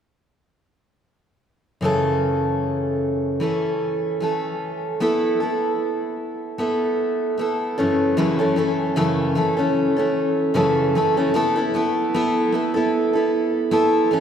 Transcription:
1.81 3.41 F#2 medium
1.81 3.41 C#3 medium
1.81 3.40 E3 medium
1.81 3.41 A3 medium
1.81 3.41 C#4 medium
1.85 3.43 A4 medium
3.40 4.20 E3 soft
3.40 4.22 A3 medium
3.40 4.21 C#4 medium
3.40 4.23 A4 medium
4.20 5.00 E3 soft
4.20 5.00 A3 medium
4.20 5.01 C#4 soft
4.20 5.02 A4 medium
5.00 5.40 A3 medium
5.00 5.40 B3 medium
5.00 5.41 E4 medium
5.00 5.39 A4 medium
5.40 6.58 B3 soft
5.40 6.60 E4 soft
5.40 6.60 A4 soft
6.58 7.37 A3 medium
6.58 7.38 B3 medium
6.58 7.39 E4 medium
6.58 7.41 A4 medium
7.38 7.78 A3 soft
7.38 7.79 B3 medium
7.38 7.78 E4 medium
7.38 7.77 A4 medium
7.78 8.16 F#2 soft
7.78 8.16 C#3 soft
7.78 8.17 E3 medium
7.78 8.17 A3 medium
7.78 8.17 C#4 medium
7.78 8.18 A4 medium
8.17 8.39 F#2 medium
8.17 8.39 C#3 medium
8.17 8.40 E3 medium
8.17 8.40 A3 medium
8.17 8.38 C#4 medium
8.17 8.37 A4 medium
8.39 8.55 E3 soft
8.39 8.56 A3 soft
8.39 8.57 C#4 soft
8.39 8.57 A4 soft
8.56 8.95 E3 medium
8.56 8.96 A3 medium
8.56 8.96 C#4 medium
8.56 8.97 A4 medium
8.96 9.36 F#2 medium
8.96 9.36 C#3 medium
8.96 9.34 E3 medium
8.96 9.35 A3 medium
8.96 9.36 C#4 medium
8.96 9.36 A4 medium
9.35 9.58 E3 medium
9.35 9.58 A3 medium
9.35 9.57 C#4 medium
9.35 9.56 A4 medium
9.57 9.98 E3 soft
9.57 9.98 A3 soft
9.57 9.97 C#4 soft
9.57 9.95 A4 soft
9.96 10.54 E3 soft
9.96 10.55 A3 soft
9.96 10.55 C#4 soft
9.96 10.55 A4 soft
10.54 10.95 F#2 medium
10.54 10.95 C#3 medium
10.54 10.94 E3 medium
10.54 10.95 A3 medium
10.54 10.95 C#4 medium
10.54 10.96 A4 medium
10.95 11.17 E3 medium
10.95 11.17 A3 medium
10.95 11.16 C#4 medium
10.95 11.16 A4 medium
11.17 11.34 E3 soft
11.17 11.33 A3 soft
11.17 11.35 C#4 soft
11.17 11.35 A4 soft
11.34 11.56 A3 medium
11.34 11.57 B3 medium
11.34 11.56 E4 medium
11.34 11.55 A4 medium
11.56 11.73 B3 soft
11.56 11.75 E4 soft
11.56 11.74 A4 medium
11.74 12.13 A3 medium
11.74 12.13 B3 medium
11.74 12.14 E4 medium
11.74 12.15 A4 medium
12.14 12.51 A3 medium
12.14 12.53 B3 medium
12.14 12.54 E4 medium
12.14 12.54 A4 medium
12.52 12.75 A3 medium
12.52 12.76 B3 medium
12.52 12.75 E4 medium
12.52 12.73 A4 medium
12.74 13.15 B3 soft
12.74 13.14 E4 soft
12.74 13.12 A4 medium
13.13 13.71 B3 soft
13.13 13.71 E4 soft
13.13 13.72 A4 soft
13.71 14.10 A3 medium
13.71 14.11 B3 medium
13.71 14.12 E4 medium
13.71 14.13 A4 medium
14.11 14.20 E3 medium
14.11 14.20 A3 medium
14.11 14.20 C#4 medium
14.11 14.20 A4 medium

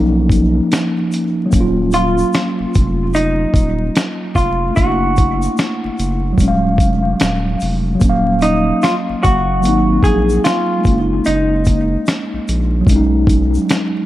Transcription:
0.00 0.61 B1 loud
0.00 1.46 F3 medium
0.00 1.09 A#3 medium
0.00 1.49 A#3 medium
0.00 1.51 C#4 medium
0.00 1.54 D#4 medium
0.29 kick medium
0.29 closed hi-hat medium
0.29 shaker soft
0.72 finger snap medium
0.72 snare loud
0.72 closed hi-hat medium
0.72 shaker medium
1.12 closed hi-hat medium
1.12 shaker soft
1.46 4.70 F#3 medium
1.50 2.24 D#1 loud
1.50 4.72 A#3 medium
1.50 kick loud
1.50 closed hi-hat medium
1.50 shaker medium
1.56 4.74 C#4 medium
1.60 4.77 F4 medium
1.92 3.11 F4 medium
1.92 closed hi-hat medium
1.92 shaker medium
2.18 shaker medium
2.33 finger snap medium
2.33 snare medium
2.33 closed hi-hat medium
2.33 shaker medium
2.60 2.66 F1 medium
2.74 3.46 F1 medium
2.74 kick medium
2.74 closed hi-hat medium
2.74 shaker soft
3.14 4.40 D#4 medium
3.14 closed hi-hat medium
3.14 shaker medium
3.54 3.90 D#1 medium
3.54 kick medium
3.54 closed hi-hat medium
3.54 shaker soft
3.96 finger snap medium
3.96 snare loud
3.96 closed hi-hat medium
3.96 shaker medium
4.35 4.71 F1 medium
4.35 4.76 F4 medium
4.35 kick medium
4.35 closed hi-hat medium
4.35 shaker medium
4.70 6.33 A3 medium
4.75 5.48 F#1 medium
4.75 6.35 A#3 medium
4.75 7.56 F#4 loud
4.75 kick loud
4.75 closed hi-hat loud
4.75 shaker medium
4.80 6.38 D4 medium
4.85 6.40 E4 medium
5.16 kick loud
5.16 closed hi-hat medium
5.16 shaker medium
5.42 shaker medium
5.57 finger snap medium
5.57 snare loud
5.57 closed hi-hat medium
5.57 shaker medium
5.84 5.90 F#1 medium
5.99 6.34 F#1 medium
5.99 closed hi-hat medium
5.99 shaker medium
6.33 7.94 F#3 medium
6.38 6.80 D#1 loud
6.38 7.97 G#3 medium
6.38 kick medium
6.38 closed hi-hat medium
6.38 shaker medium
6.43 8.00 C#4 medium
6.48 8.03 F5 medium
6.78 7.15 F1 loud
6.78 kick medium
6.78 closed hi-hat medium
6.78 shaker soft
7.20 7.56 D#1 loud
7.20 finger snap medium
7.20 snare loud
7.20 closed hi-hat medium
7.20 shaker medium
7.60 7.97 F1 medium
7.60 open hi-hat soft
7.60 shaker medium
7.95 9.57 F#3 medium
8.00 8.72 D#1 loud
8.00 9.59 A#3 medium
8.00 kick loud
8.00 closed hi-hat medium
8.00 shaker medium
8.05 9.62 C#4 medium
8.10 9.65 F5 medium
8.41 8.84 D#4 medium
8.41 closed hi-hat medium
8.41 shaker medium
8.82 8.94 F4 medium
8.82 finger snap medium
8.82 snare loud
8.82 closed hi-hat medium
8.82 shaker medium
9.09 9.15 F#1 medium
9.23 9.66 F#1 medium
9.23 10.03 F#4 loud
9.23 kick medium
9.23 closed hi-hat medium
9.23 shaker medium
9.60 10.84 F#3 medium
9.60 10.83 A#3 medium
9.60 shaker medium
9.65 10.00 G#1 loud
9.65 10.86 C4 medium
9.65 10.87 D#4 medium
9.65 closed hi-hat medium
10.03 10.39 A#1 medium
10.03 10.44 G#4 loud
10.03 kick medium
10.03 closed hi-hat medium
10.03 shaker soft
10.29 shaker soft
10.44 11.22 F4 loud
10.44 finger snap medium
10.44 snare loud
10.44 closed hi-hat medium
10.44 shaker medium
10.79 12.81 G#3 medium
10.84 11.21 F#1 medium
10.84 12.83 A#3 medium
10.84 kick loud
10.84 closed hi-hat medium
10.84 shaker medium
10.89 12.86 C#4 medium
10.93 10.97 D4 soft
11.00 12.91 D#4 medium
11.25 11.97 F#1 loud
11.25 13.65 D#4 medium
11.25 closed hi-hat medium
11.25 shaker medium
11.65 kick medium
11.65 closed hi-hat medium
11.65 shaker soft
12.07 finger snap medium
12.07 snare loud
12.07 closed hi-hat medium
12.07 shaker medium
12.33 12.39 A#1 medium
12.48 12.83 A#1 loud
12.48 closed hi-hat medium
12.48 shaker medium
12.81 14.06 F#3 medium
12.86 13.58 B1 loud
12.86 14.06 G#3 medium
12.86 kick medium
12.86 closed hi-hat medium
12.86 shaker medium
12.91 14.06 C#4 medium
12.96 14.06 D#4 medium
13.27 kick medium
13.27 closed hi-hat medium
13.27 shaker medium
13.54 shaker soft
13.69 finger snap medium
13.69 snare loud
13.69 closed hi-hat medium
13.69 shaker medium

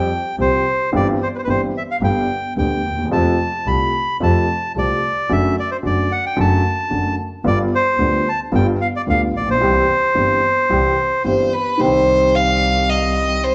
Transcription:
0.00 0.36 G5 medium
0.38 0.61 C2 soft
0.38 0.61 C3 soft
0.38 0.61 F3 soft
0.38 0.61 G3 soft
0.38 0.61 C4 soft
0.38 0.61 G4 soft
0.38 0.90 C5 medium
0.92 1.15 G1 medium
0.92 1.16 G1 medium
0.92 1.15 G2 medium
0.92 1.15 E3 medium
0.92 1.15 G3 soft
0.92 1.15 C4 medium
0.92 1.16 G4 medium
0.96 1.08 D5 medium
1.23 1.28 C5 medium
1.39 1.41 C5 soft
1.44 1.70 G1 soft
1.44 1.70 G2 soft
1.44 1.70 E3 soft
1.44 1.70 G3 soft
1.44 1.70 C4 soft
1.44 1.70 G4 soft
1.44 1.49 B4 medium
1.50 1.61 C5 medium
1.77 1.83 E5 medium
1.91 1.96 F5 medium
2.01 2.24 G1 medium
2.01 2.25 G1 medium
2.01 2.25 G2 medium
2.01 2.25 D3 soft
2.01 2.25 G3 soft
2.01 2.25 B3 soft
2.01 2.25 G4 soft
2.01 2.54 G5 medium
2.56 2.79 D2 soft
2.56 2.80 D2 soft
2.56 2.80 D3 soft
2.56 2.80 G3 soft
2.56 2.80 B3 soft
2.56 2.80 G4 soft
2.56 3.08 G5 medium
2.84 3.11 D#2 soft
2.91 2.98 D2 soft
2.98 3.05 D#2 soft
3.05 3.12 E2 medium
3.11 3.34 F2 medium
3.11 3.34 C3 medium
3.11 3.34 F3 medium
3.11 3.34 A3 soft
3.11 3.34 F4 medium
3.11 3.68 A5 medium
3.66 3.89 C2 soft
3.66 3.89 C3 soft
3.66 3.89 F3 soft
3.66 3.89 A3 soft
3.66 3.89 F4 soft
3.66 4.17 B5 medium
4.20 4.43 F2 medium
4.20 4.43 C3 soft
4.20 4.43 F3 medium
4.20 4.43 A3 soft
4.20 4.43 F4 soft
4.20 4.72 A5 medium
4.75 4.98 C2 soft
4.75 4.98 C3 soft
4.75 4.98 F3 soft
4.75 4.98 A3 soft
4.75 4.98 F4 soft
4.75 5.32 D5 medium
5.29 5.52 F#1 medium
5.29 5.52 F#2 medium
5.29 5.52 D3 medium
5.29 5.52 F#3 medium
5.29 5.52 A3 soft
5.29 5.52 F#4 medium
5.29 5.56 E5 medium
5.59 5.70 D5 medium
5.71 5.77 C5 medium
5.83 6.06 F#1 soft
5.83 6.06 F#2 soft
5.83 6.06 D3 soft
5.83 6.06 F#3 soft
5.83 6.06 A3 soft
5.83 6.06 F#4 soft
5.83 6.12 D5 medium
6.12 6.25 F#5 medium
6.26 6.39 G5 medium
6.36 6.60 F#1 medium
6.36 6.59 F#2 medium
6.36 6.59 D3 medium
6.36 6.60 F#3 medium
6.36 6.60 A3 soft
6.36 6.60 F#4 medium
6.36 7.16 A5 medium
6.90 7.14 F#1 soft
6.90 7.13 F#2 soft
6.90 7.13 D3 soft
6.90 7.13 F#3 soft
6.90 7.13 A3 soft
6.90 7.14 F#4 soft
7.44 7.67 G1 medium
7.44 7.67 G2 medium
7.44 7.67 D3 soft
7.44 7.67 G3 medium
7.44 7.67 B3 soft
7.44 7.67 F4 medium
7.44 7.59 D5 medium
7.75 8.29 C5 medium
7.98 8.21 D2 soft
7.98 8.21 D3 soft
7.98 8.21 G3 soft
7.98 8.21 B3 soft
7.98 8.22 F4 soft
8.29 8.40 A5 medium
8.52 8.75 G1 medium
8.52 8.76 G1 medium
8.52 8.76 G2 medium
8.52 8.75 D3 medium
8.52 8.75 G3 soft
8.52 8.76 B3 soft
8.52 8.76 F4 medium
8.52 8.67 G5 medium
8.81 8.87 F5 medium
8.96 9.02 D5 medium
9.07 9.30 D2 soft
9.07 9.30 D3 soft
9.07 9.30 G3 soft
9.07 9.30 B3 soft
9.07 9.30 F4 soft
9.07 9.21 F5 medium
9.34 9.61 A#1 soft
9.34 9.49 D5 medium
9.40 9.47 A1 soft
9.47 9.54 A#1 soft
9.47 11.23 C5 medium
9.55 9.61 B1 medium
9.60 9.84 C2 medium
9.60 9.84 C3 medium
9.60 9.84 E3 medium
9.60 9.84 G3 medium
9.60 9.84 C4 soft
9.60 9.84 G4 medium
10.15 10.38 G1 soft
10.15 10.38 G2 soft
10.15 10.38 E3 soft
10.15 10.38 G3 soft
10.15 10.38 C4 soft
10.15 10.38 G4 soft
10.70 10.93 C2 medium
10.70 10.93 C3 medium
10.70 10.93 E3 soft
10.70 10.93 G3 soft
10.70 10.93 C4 soft
10.70 10.93 G4 medium
11.24 11.48 G1 soft
11.24 11.49 G1 soft
11.24 11.48 G2 soft
11.24 11.48 E3 soft
11.24 11.48 G3 soft
11.24 11.48 C4 soft
11.24 11.49 G4 soft
11.24 11.54 C5 medium
11.53 11.81 B4 medium
11.78 13.55 C2 medium
11.78 13.55 C3 medium
11.78 13.55 D#3 soft
11.78 13.55 G3 soft
11.78 13.55 C4 soft
11.78 13.55 G4 medium
11.78 12.36 C5 medium
12.35 12.91 F5 medium
12.90 13.45 D#5 medium
13.44 13.55 C5 medium

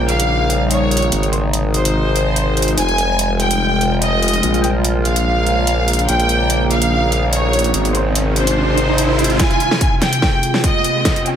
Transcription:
0.00 1.10 A#1 medium
0.00 1.09 C#3 medium
0.00 1.10 G3 medium
0.00 1.09 A#3 medium
0.00 1.10 D#4 medium
0.08 0.63 F5 medium
0.08 closed hi-hat soft
0.20 closed hi-hat medium
0.50 closed hi-hat soft
0.71 1.25 C#5 medium
0.71 closed hi-hat medium
0.91 closed hi-hat soft
0.97 closed hi-hat medium
1.02 closed hi-hat soft
1.12 2.76 G#1 medium
1.12 4.40 C3 medium
1.12 2.76 D#3 medium
1.12 6.05 G#3 medium
1.12 2.76 D#4 medium
1.12 closed hi-hat medium
1.23 closed hi-hat soft
1.33 1.58 C5 medium
1.33 closed hi-hat soft
1.53 closed hi-hat medium
1.74 2.70 C5 medium
1.74 closed hi-hat soft
1.85 closed hi-hat medium
2.16 closed hi-hat soft
2.36 closed hi-hat medium
2.57 closed hi-hat soft
2.62 closed hi-hat medium
2.68 closed hi-hat soft
2.77 4.41 F1 medium
2.77 4.41 G3 medium
2.77 6.05 F4 medium
2.77 3.32 G#5 loud
2.77 closed hi-hat medium
2.89 closed hi-hat soft
2.98 closed hi-hat soft
3.19 closed hi-hat medium
3.40 3.94 G5 medium
3.40 closed hi-hat soft
3.51 closed hi-hat medium
3.81 closed hi-hat soft
4.02 4.56 D#5 medium
4.02 closed hi-hat medium
4.23 closed hi-hat soft
4.28 closed hi-hat medium
4.33 closed hi-hat soft
4.43 6.07 A#1 medium
4.43 7.71 C#3 medium
4.43 7.71 A#3 medium
4.43 closed hi-hat medium
4.54 closed hi-hat soft
4.64 4.89 G5 medium
4.64 closed hi-hat soft
4.84 closed hi-hat medium
5.05 6.01 F5 medium
5.05 closed hi-hat soft
5.16 closed hi-hat medium
5.47 closed hi-hat soft
5.67 closed hi-hat medium
5.88 closed hi-hat soft
5.93 closed hi-hat medium
5.99 closed hi-hat soft
6.09 7.72 A#1 medium
6.09 7.73 G3 medium
6.09 9.36 D#4 medium
6.09 6.63 G5 loud
6.09 closed hi-hat medium
6.09 riser medium
6.20 closed hi-hat soft
6.29 closed hi-hat medium
6.50 closed hi-hat medium
6.71 7.25 F5 medium
6.71 closed hi-hat soft
6.82 closed hi-hat medium
7.12 closed hi-hat soft
7.33 7.87 C#5 medium
7.33 closed hi-hat medium
7.53 closed hi-hat soft
7.59 closed hi-hat medium
7.64 closed hi-hat soft
7.74 9.38 G#1 medium
7.74 9.38 C3 medium
7.74 9.38 D#3 medium
7.74 9.38 G#3 medium
7.74 closed hi-hat medium
7.85 closed hi-hat soft
7.95 8.20 C5 medium
7.95 closed hi-hat medium
8.15 closed hi-hat medium
8.36 9.32 C5 medium
8.36 closed hi-hat soft
8.47 closed hi-hat medium
8.78 closed hi-hat soft
8.98 closed hi-hat medium
9.19 closed hi-hat soft
9.24 closed hi-hat medium
9.30 closed hi-hat soft
9.39 11.03 C3 medium
9.39 11.03 G#3 medium
9.39 11.36 F4 medium
9.39 11.36 G#4 medium
9.39 9.94 G#5 loud
9.39 kick loud
9.39 snare soft
9.39 closed hi-hat medium
9.39 riser medium
9.51 closed hi-hat soft
9.60 closed hi-hat medium
9.71 snare soft
9.81 kick medium
9.81 closed hi-hat medium
10.02 10.56 G5 medium
10.02 snare soft
10.02 closed hi-hat medium
10.13 closed hi-hat medium
10.22 kick medium
10.22 snare medium
10.43 closed hi-hat medium
10.54 snare soft
10.64 11.18 D#5 medium
10.64 kick medium
10.64 closed hi-hat medium
10.84 closed hi-hat medium
11.05 11.36 C#3 medium
11.05 11.36 A#3 medium
11.05 kick medium
11.05 snare soft
11.05 closed hi-hat medium
11.16 closed hi-hat soft
11.26 11.36 G5 medium
11.26 closed hi-hat soft

